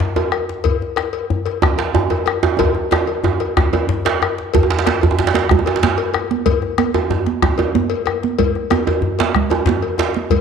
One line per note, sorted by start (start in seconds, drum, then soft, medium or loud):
0.00 djembe slap medium
0.00 djembe bass medium
0.16 cowbell soft
0.16 djembe tone medium
0.32 bombo rim medium
0.32 cowbell soft
0.49 bombo rim soft
0.49 djembe slap medium
0.64 bombo low medium
0.64 cowbell medium
0.64 djembe bass medium
0.82 djembe tone medium
0.96 bombo rim medium
0.96 cowbell soft
0.96 djembe slap medium
1.13 cowbell soft
1.30 djembe slap soft
1.30 djembe tone medium
1.30 djembe bass medium
1.46 bombo rim soft
1.46 cowbell soft
1.46 djembe slap medium
1.62 bombo rim medium
1.62 bombo low medium
1.62 djembe tone medium
1.78 bombo rim soft
1.78 cowbell soft
1.78 djembe slap medium
1.78 djembe tone medium
1.95 djembe slap medium
1.95 djembe tone medium
1.95 djembe bass medium
2.10 cowbell soft
2.10 djembe tone medium
2.26 bombo rim medium
2.26 cowbell soft
2.26 djembe tone medium
2.43 bombo rim soft
2.43 djembe slap medium
2.43 djembe tone loud
2.59 bombo low medium
2.59 cowbell medium
2.59 djembe tone medium
2.59 djembe bass medium
2.75 bombo rim soft
2.75 djembe tone medium
2.91 bombo rim medium
2.91 cowbell soft
2.91 djembe slap medium
2.91 djembe tone medium
3.07 cowbell soft
3.24 bombo rim soft
3.24 djembe tone medium
3.24 djembe bass medium
3.40 bombo rim soft
3.40 cowbell soft
3.40 djembe slap medium
3.57 bombo rim medium
3.57 bombo low medium
3.57 djembe tone loud
3.73 cowbell soft
3.73 djembe tone medium
3.89 bombo rim soft
3.89 djembe slap medium
3.89 djembe bass medium
4.05 cowbell soft
4.05 djembe slap medium
4.22 bombo rim medium
4.22 cowbell soft
4.22 djembe tone medium
4.38 djembe slap medium
4.54 bombo low medium
4.54 cowbell medium
4.54 djembe bass medium
4.54 low conga medium
4.54 djembe bass medium
4.63 djembe tone medium
4.70 bombo rim soft
4.70 djembe slap medium
4.70 djembe tone medium
4.79 djembe slap medium
4.86 bombo rim medium
4.86 cowbell soft
4.86 djembe slap medium
4.86 high conga medium
5.01 cowbell soft
5.01 djembe bass loud
5.11 djembe tone medium
5.19 djembe slap medium
5.19 djembe slap soft
5.19 djembe tone medium
5.19 djembe bass medium
5.27 djembe slap medium
5.34 bombo rim soft
5.34 cowbell soft
5.34 djembe slap medium
5.34 high conga medium
5.49 bombo rim medium
5.49 bombo low medium
5.49 djembe bass loud
5.49 low conga medium
5.59 djembe tone medium
5.66 bombo rim soft
5.66 cowbell soft
5.66 djembe slap medium
5.66 djembe slap soft
5.66 djembe tone medium
5.76 djembe slap medium
5.83 djembe slap medium
5.83 high conga medium
5.83 djembe bass medium
5.98 cowbell medium
5.98 high conga soft
6.14 bombo rim medium
6.14 cowbell soft
6.14 djembe tone medium
6.31 bombo rim soft
6.31 djembe slap medium
6.31 high conga medium
6.46 bombo low medium
6.46 cowbell medium
6.46 low conga medium
6.46 djembe bass medium
6.62 bombo rim soft
6.62 djembe tone medium
6.78 bombo rim medium
6.78 cowbell soft
6.78 djembe slap medium
6.78 high conga medium
6.94 cowbell soft
6.94 djembe tone medium
7.10 djembe slap soft
7.10 djembe tone medium
7.10 djembe bass medium
7.26 bombo rim soft
7.26 djembe slap medium
7.26 high conga medium
7.42 bombo rim medium
7.42 bombo low medium
7.42 djembe tone medium
7.42 low conga medium
7.58 bombo rim soft
7.58 cowbell soft
7.58 djembe slap soft
7.58 djembe tone medium
7.75 djembe slap medium
7.75 high conga medium
7.75 djembe bass medium
7.90 cowbell medium
7.90 high conga soft
8.06 bombo rim medium
8.06 cowbell soft
8.06 djembe tone medium
8.23 bombo rim soft
8.23 djembe slap medium
8.23 high conga medium
8.39 bombo low medium
8.39 cowbell medium
8.39 djembe bass medium
8.39 low conga medium
8.55 bombo rim soft
8.55 djembe tone medium
8.70 bombo rim medium
8.70 cowbell soft
8.70 djembe slap medium
8.70 high conga medium
8.70 djembe tone medium
8.87 cowbell soft
8.87 djembe tone medium
9.02 djembe slap soft
9.02 djembe tone medium
9.02 djembe bass medium
9.19 bombo rim soft
9.19 cowbell soft
9.19 djembe slap medium
9.19 high conga medium
9.35 bombo rim medium
9.35 bombo low medium
9.35 low conga medium
9.50 bombo rim soft
9.50 cowbell soft
9.50 djembe slap soft
9.50 djembe tone medium
9.66 djembe slap medium
9.66 djembe tone medium
9.66 high conga medium
9.66 djembe bass medium
9.82 cowbell soft
9.82 high conga soft
9.98 cowbell soft
9.98 djembe slap medium
9.98 djembe tone medium
10.14 bombo rim soft
10.14 djembe slap medium
10.14 high conga medium
10.30 bombo low medium
10.30 cowbell medium
10.30 high conga soft
10.30 djembe bass medium
10.30 low conga medium